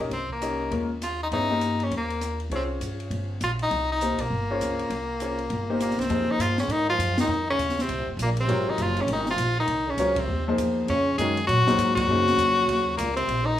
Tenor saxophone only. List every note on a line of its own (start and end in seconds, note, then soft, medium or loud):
0.13 0.29 C4 medium
0.32 0.87 A#3 medium
1.03 1.20 F4 medium
1.23 1.28 D#4 medium
1.33 1.85 D#4 medium
1.84 1.93 C#4 medium
1.97 2.39 A#3 medium
2.55 2.63 C4 medium
3.44 3.51 F4 medium
3.63 3.89 D#4 medium
3.92 4.22 D#4 medium
4.21 5.81 A#3 medium
5.82 6.01 A#3 medium
6.00 6.32 C4 medium
6.31 6.43 D#4 medium
6.41 6.59 F4 medium
6.60 6.73 C#4 medium
6.72 6.89 D#4 loud
6.90 7.17 F4 loud
7.20 7.47 D#4 medium
7.50 7.82 C#4 medium
7.81 8.09 C4 medium
8.22 8.30 A#3 medium
8.40 8.71 C4 medium
8.70 8.84 D#4 medium
8.82 9.03 F4 medium
9.01 9.11 C#4 medium
9.13 9.28 D#4 medium
9.31 9.57 F4 loud
9.60 9.92 D#4 medium
9.90 10.20 C#4 medium
10.19 10.48 C4 medium
10.89 11.17 C#4 medium
11.18 11.46 G#4 medium
11.47 11.92 F#4 loud
11.95 12.94 F#4 loud
12.97 13.15 A#3 medium
13.17 13.47 C4 medium
13.46 13.60 D#4 loud